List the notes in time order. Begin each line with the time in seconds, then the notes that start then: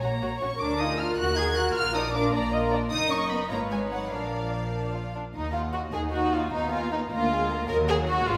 Already playing: C#5
0.01 A#1 A#3 F#4 C#5 A#5
0.22 A#1 F#4 C#5
0.41 A#1 C#4 F#4 C#5 C#6
0.59 D2 D4 A#4 D6
0.78 D#4 F4 G#4 D#6
0.98 D4 F4 A#4 F6
1.17 D#2 F#4 A#4 F#6
1.37 D#4 F#4 G#4 G#6
1.55 F#4 A#4 F#6
1.75 A#1 F4 A#4 F6
1.95 D4 D#4 D5 D#6
2.13 D4 F4 A#4 D6
2.32 A#1 A#3 D4 D5 A#5
2.52 F4 A#4 D#5
2.71 D4 D5
2.91 F#1 D#4 A#4 D#5 D#6
3.10 C#4 C#6
3.31 B3 B5
3.50 G#1 A#3 F4 B4 C#5 A#5
3.71 G#3 G#5
3.82 D#4
3.92 F#3 F#5
4.11 A#1 F3 D4 A#4 D5 F5
4.74 D4
4.95 F4
5.16 D4
5.35 D#2 D#4 D#5
5.53 F4 F#5
5.74 F#4 D#5
5.94 D#2 D#4 G#4 F#5
6.13 F#4 D#5
6.33 F4 F#5
6.52 D#2 B3 D#4 F5
6.72 F4 G#5
6.92 D#4 F5
7.11 D2 A#3 F4 A#5
7.32 G#3 G#5
7.51 A#3 A#5
7.69 D#2 F#3 A#4 D#5
7.88 G#4 F#5
8.08 F#4 D#5
8.27 G#1 G#2 G#3 F4 B4